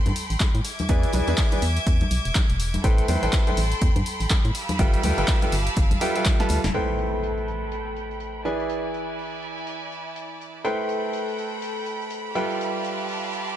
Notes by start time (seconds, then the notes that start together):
Already playing: A4 G5 B5 C6
0.06 G2, closed hi-hat, high conga
0.16 closed hi-hat, open hi-hat, tambourine
0.30 A1, closed hi-hat, open hi-hat, tambourine
0.40 kick, snare, clap, closed hi-hat, tambourine, high conga
0.55 A2, closed hi-hat
0.64 E5 D6 G#6, snare, closed hi-hat, open hi-hat, tambourine
0.79 closed hi-hat, tambourine, high conga
0.89 E2 E3 E4 G#4 B4 D5 G#5, kick, closed hi-hat, tambourine
1.03 closed hi-hat
1.13 B1 E3 E4 G#4 B4 D5 G#5, closed hi-hat, open hi-hat, tambourine, high conga
1.27 E2 E3 E4 G#4 B4 D5 G#5, closed hi-hat, tambourine
1.37 kick, snare, clap, closed hi-hat, open hi-hat, tambourine
1.52 E3 E4 G#4 B4 D5 G#5, closed hi-hat, high conga
1.62 E2, closed hi-hat, open hi-hat, tambourine
1.77 closed hi-hat, tambourine
1.87 E2, kick, closed hi-hat, tambourine
2.01 closed hi-hat, high conga
2.11 B1, closed hi-hat, open hi-hat, tambourine
2.25 E1, closed hi-hat, tambourine
2.35 kick, snare, clap, closed hi-hat, tambourine, high conga
2.50 E1, closed hi-hat
2.60 closed hi-hat, open hi-hat, tambourine
2.74 closed hi-hat, tambourine, high conga
2.84 A1 A3 E4 A4 B4 C5 G5 B5 C6, kick, closed hi-hat, tambourine
2.98 closed hi-hat
3.08 E2 A3 E4 A4 B4 C5 G5, closed hi-hat, open hi-hat, tambourine, high conga
3.23 A1 A3 E4 A4 B4 C5 G5, closed hi-hat, tambourine
3.33 kick, snare, clap, closed hi-hat
3.47 A3 E4 A4 B4 C5 G5, closed hi-hat, high conga
3.57 A1, closed hi-hat, open hi-hat, tambourine
3.72 closed hi-hat, tambourine
3.81 E2, kick, closed hi-hat, tambourine
3.96 G2, closed hi-hat, high conga
4.06 closed hi-hat, open hi-hat, tambourine
4.20 A1, closed hi-hat, open hi-hat, tambourine
4.30 kick, snare, clap, closed hi-hat, tambourine, high conga
4.45 A2, closed hi-hat
4.55 G4 F5 A5 E6, snare, closed hi-hat, open hi-hat, tambourine
4.69 closed hi-hat, tambourine, high conga
4.79 G1 G3 F4 A4 B4 E5 G5, kick, closed hi-hat, tambourine
4.94 closed hi-hat
5.03 D2 G3 F4 A4 B4 E5 G5, closed hi-hat, open hi-hat, tambourine, high conga
5.18 G1 G3 F4 A4 B4 E5 G5, closed hi-hat, tambourine
5.28 kick, snare, clap, closed hi-hat, open hi-hat
5.42 G3 F4 A4 B4 E5 G5, closed hi-hat, high conga
5.52 G1, closed hi-hat, open hi-hat, tambourine
5.67 closed hi-hat, tambourine
5.76 G1, kick, closed hi-hat, tambourine
5.91 closed hi-hat, high conga
6.01 G3 F4 A4 B4 E5 G5, closed hi-hat, open hi-hat, tambourine
6.16 G3 F4 A4 B4 E5 G5, closed hi-hat, tambourine
6.25 kick, snare, clap, closed hi-hat, tambourine, high conga
6.40 G3 F4 A4 B4 E5 A5, snare, closed hi-hat
6.49 D2, snare, closed hi-hat, open hi-hat, tambourine
6.64 F1, snare, closed hi-hat, tambourine, high conga
6.74 A3 E4 A4 B4 C5 G5 B5, closed hi-hat, impact
6.99 closed hi-hat
7.23 closed hi-hat
7.38 closed hi-hat
7.48 closed hi-hat
7.72 closed hi-hat
7.96 closed hi-hat
8.11 closed hi-hat
8.20 closed hi-hat
8.45 E3 E4 G#4 B4 D5 G#5, snare, closed hi-hat
8.60 closed hi-hat
8.69 closed hi-hat
8.94 closed hi-hat
9.19 open hi-hat
9.43 closed hi-hat
9.58 closed hi-hat
9.67 closed hi-hat
9.92 closed hi-hat
10.16 closed hi-hat
10.41 closed hi-hat
10.64 A3 E4 A4 B4 C5 G5 B5, closed hi-hat
10.89 closed hi-hat
11.13 closed hi-hat
11.28 closed hi-hat
11.38 closed hi-hat
11.62 closed hi-hat
11.86 closed hi-hat
12.02 closed hi-hat
12.10 closed hi-hat
12.35 G3 F4 G4 A4 B4 D5 E5 G5 A5, snare, closed hi-hat
12.50 closed hi-hat
12.61 closed hi-hat
12.84 closed hi-hat
13.08 open hi-hat
13.33 closed hi-hat
13.47 closed hi-hat